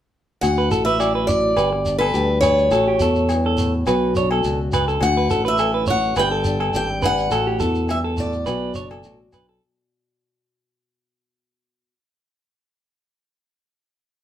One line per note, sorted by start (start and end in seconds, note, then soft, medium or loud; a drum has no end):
0.41 0.69 D2 loud
0.41 0.98 F#4 medium
0.41 0.83 F#5 loud
0.41 muted nylon-string guitar stroke medium
0.41 low agogo medium
0.41 shekere medium
0.58 0.71 B4 medium
0.70 1.53 A1 loud
0.70 1.27 E4 medium
0.70 0.86 A4 medium
0.70 shekere medium
0.85 0.99 B4 medium
0.85 1.25 E5 medium
0.85 shekere soft
0.99 1.54 F#3 medium
0.99 1.57 F#4 medium
0.99 1.14 D5 medium
0.99 low agogo medium
0.99 shekere medium
1.15 1.28 B4 medium
1.27 1.54 E4 medium
1.27 1.98 D5 medium
1.27 muted clean electric guitar stroke medium
1.27 shekere medium
1.56 2.10 G1 medium
1.56 2.13 G4 medium
1.56 1.71 B4 medium
1.56 muted nylon-string guitar stroke medium
1.56 low agogo medium
1.56 shekere medium
1.73 muted clean electric guitar stroke medium
1.86 2.41 D4 medium
1.86 shekere medium
1.99 2.28 A4 medium
1.99 2.40 B4 medium
1.99 low agogo medium
2.14 2.68 D2 medium
2.14 2.68 G3 medium
2.14 2.68 G4 medium
2.14 shekere medium
2.41 2.68 D4 medium
2.41 2.71 B4 medium
2.41 4.68 C#5 medium
2.41 low agogo medium
2.41 shekere medium
2.58 shekere soft
2.71 2.97 A1 loud
2.71 3.28 A2 medium
2.71 3.85 F#4 medium
2.71 2.86 A4 medium
2.71 low agogo medium
2.71 shekere medium
2.88 3.00 G4 medium
3.00 3.83 E2 medium
3.00 3.83 E4 medium
3.00 3.29 A4 medium
3.00 shekere medium
3.15 shekere soft
3.29 3.57 G2 medium
3.29 low agogo medium
3.29 shekere medium
3.46 3.73 A4 medium
3.57 3.86 A2 medium
3.57 shekere medium
3.86 4.41 B1 loud
3.86 4.43 B2 medium
3.86 5.00 F#4 medium
3.86 4.14 B4 medium
3.86 low agogo medium
3.86 shekere medium
4.15 4.99 D4 medium
4.15 4.31 C#5 medium
4.15 shekere medium
4.31 4.59 A4 medium
4.31 low agogo medium
4.44 4.98 C#2 medium
4.44 4.72 B2 medium
4.44 shekere medium
4.72 5.00 C#3 medium
4.72 4.88 B4 medium
4.72 low agogo medium
4.72 shekere medium
4.88 5.01 A4 medium
4.88 shekere soft
5.00 5.28 D2 loud
5.00 6.13 D3 medium
5.00 6.16 F#4 medium
5.00 5.43 F#5 medium
5.00 low agogo medium
5.00 shekere medium
5.17 5.30 B4 medium
5.29 6.12 A1 medium
5.29 6.13 E4 medium
5.29 5.45 A4 medium
5.29 shekere medium
5.45 5.58 B4 medium
5.45 5.86 E5 medium
5.45 shekere soft
5.58 5.87 E3 medium
5.58 5.74 A4 medium
5.58 low agogo medium
5.58 shekere medium
5.74 5.87 B4 medium
5.87 6.17 F#3 medium
5.87 6.15 C#5 medium
5.87 6.19 F#5 medium
5.87 shekere medium
6.16 6.70 G1 loud
6.16 7.28 G2 medium
6.16 6.74 G4 medium
6.16 6.31 B4 medium
6.16 6.75 G5 medium
6.16 low agogo medium
6.16 shekere medium
6.31 6.59 A4 medium
6.44 7.01 D4 medium
6.44 shekere medium
6.60 6.88 A4 medium
6.60 low agogo medium
6.74 7.28 G#1 medium
6.74 7.29 G3 medium
6.74 7.29 G4 medium
6.74 7.02 G5 medium
6.74 shekere medium
7.02 7.28 D4 medium
7.02 7.30 B4 medium
7.02 7.87 F#5 loud
7.02 low agogo medium
7.02 shekere medium
7.18 shekere soft
7.30 7.58 A1 loud
7.30 7.87 A2 medium
7.30 8.46 F#4 medium
7.30 7.46 A4 medium
7.30 low agogo medium
7.30 shekere medium
7.47 7.60 G4 medium
7.60 8.43 E2 medium
7.60 8.44 E4 medium
7.60 7.88 A4 medium
7.60 shekere medium
7.75 shekere soft
7.87 8.16 G2 medium
7.87 7.98 E5 medium
7.87 low agogo medium
7.87 shekere medium
8.04 8.32 A4 medium
8.17 8.46 A2 medium
8.17 9.30 D5 medium
8.17 shekere medium
8.32 shekere soft
8.46 8.73 B1 loud
8.46 11.92 B2 medium
8.46 9.04 F#4 medium
8.46 8.74 B4 medium
8.46 low agogo medium
8.46 shekere medium
8.75 9.02 F#1 medium
8.75 9.32 D4 medium
8.75 8.90 C#5 medium
8.75 shekere medium
8.90 9.19 A4 medium
8.90 low agogo medium
8.90 shekere soft
9.04 9.31 A1 medium
9.04 9.59 F#3 medium
9.04 11.93 F#4 medium
9.04 shekere medium
9.33 9.59 B1 medium
9.33 9.59 D4 medium
9.33 9.48 B4 medium
9.33 low agogo medium
9.33 shekere medium
9.49 9.62 A4 medium